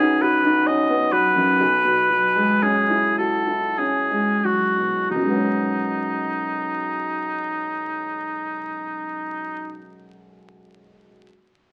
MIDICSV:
0, 0, Header, 1, 3, 480
1, 0, Start_track
1, 0, Key_signature, 5, "major"
1, 0, Tempo, 917431
1, 838, Time_signature, 3, 2, 24, 8
1, 839, Tempo, 1022147
1, 1319, Tempo, 1165049
1, 1799, Tempo, 1310044
1, 4705, End_track
2, 0, Start_track
2, 0, Title_t, "Oboe"
2, 0, Program_c, 0, 68
2, 0, Note_on_c, 0, 68, 61
2, 114, Note_on_c, 0, 71, 52
2, 122, Note_off_c, 0, 68, 0
2, 349, Note_on_c, 0, 75, 55
2, 357, Note_off_c, 0, 71, 0
2, 586, Note_on_c, 0, 71, 62
2, 593, Note_off_c, 0, 75, 0
2, 1318, Note_on_c, 0, 68, 53
2, 1325, Note_off_c, 0, 71, 0
2, 1546, Note_off_c, 0, 68, 0
2, 1548, Note_on_c, 0, 69, 39
2, 1793, Note_on_c, 0, 68, 41
2, 1799, Note_off_c, 0, 69, 0
2, 2040, Note_on_c, 0, 66, 37
2, 2045, Note_off_c, 0, 68, 0
2, 2279, Note_off_c, 0, 66, 0
2, 2281, Note_on_c, 0, 63, 37
2, 4000, Note_off_c, 0, 63, 0
2, 4705, End_track
3, 0, Start_track
3, 0, Title_t, "Grand piano"
3, 0, Program_c, 1, 0
3, 0, Control_c, 1, 64, 127
3, 0, Note_on_c, 1, 35, 42
3, 0, Note_on_c, 1, 42, 29
3, 0, Note_on_c, 1, 54, 33
3, 0, Note_on_c, 1, 59, 39
3, 0, Note_on_c, 1, 61, 33
3, 0, Note_on_c, 1, 63, 34
3, 69, Note_off_c, 1, 61, 0
3, 112, Note_on_c, 1, 66, 37
3, 184, Note_off_c, 1, 63, 0
3, 231, Note_on_c, 1, 63, 35
3, 300, Note_off_c, 1, 66, 0
3, 349, Note_on_c, 1, 61, 36
3, 419, Note_off_c, 1, 63, 0
3, 468, Note_off_c, 1, 59, 0
3, 468, Note_on_c, 1, 59, 35
3, 540, Note_off_c, 1, 61, 0
3, 585, Note_off_c, 1, 54, 0
3, 585, Note_on_c, 1, 54, 31
3, 663, Note_off_c, 1, 59, 0
3, 710, Note_off_c, 1, 42, 0
3, 710, Note_on_c, 1, 42, 31
3, 786, Note_off_c, 1, 54, 0
3, 816, Note_off_c, 1, 35, 0
3, 837, Note_off_c, 1, 42, 0
3, 838, Note_on_c, 1, 35, 39
3, 847, Control_c, 1, 64, 0
3, 927, Control_c, 1, 64, 127
3, 952, Note_on_c, 1, 47, 29
3, 1070, Note_on_c, 1, 54, 28
3, 1144, Note_off_c, 1, 47, 0
3, 1193, Note_on_c, 1, 56, 31
3, 1267, Note_off_c, 1, 54, 0
3, 1318, Note_on_c, 1, 61, 30
3, 1386, Note_off_c, 1, 56, 0
3, 1431, Note_on_c, 1, 64, 29
3, 1502, Note_off_c, 1, 61, 0
3, 1548, Note_on_c, 1, 66, 29
3, 1622, Note_off_c, 1, 64, 0
3, 1666, Note_on_c, 1, 64, 27
3, 1746, Note_off_c, 1, 66, 0
3, 1797, Note_on_c, 1, 61, 27
3, 1866, Note_off_c, 1, 64, 0
3, 1915, Note_on_c, 1, 56, 25
3, 1990, Note_off_c, 1, 61, 0
3, 2039, Note_on_c, 1, 54, 23
3, 2116, Note_off_c, 1, 56, 0
3, 2161, Note_on_c, 1, 47, 20
3, 2238, Note_off_c, 1, 54, 0
3, 2272, Note_off_c, 1, 35, 0
3, 2281, Note_on_c, 1, 35, 28
3, 2284, Note_off_c, 1, 47, 0
3, 2298, Control_c, 1, 64, 0
3, 2298, Note_on_c, 1, 42, 23
3, 2313, Note_on_c, 1, 54, 25
3, 2329, Note_on_c, 1, 56, 25
3, 2345, Note_on_c, 1, 59, 25
3, 2362, Note_on_c, 1, 61, 24
3, 2389, Control_c, 1, 64, 127
3, 4016, Note_off_c, 1, 35, 0
3, 4033, Note_off_c, 1, 42, 0
3, 4048, Note_off_c, 1, 54, 0
3, 4064, Note_off_c, 1, 56, 0
3, 4080, Note_off_c, 1, 59, 0
3, 4096, Note_off_c, 1, 61, 0
3, 4527, Control_c, 1, 64, 0
3, 4705, End_track
0, 0, End_of_file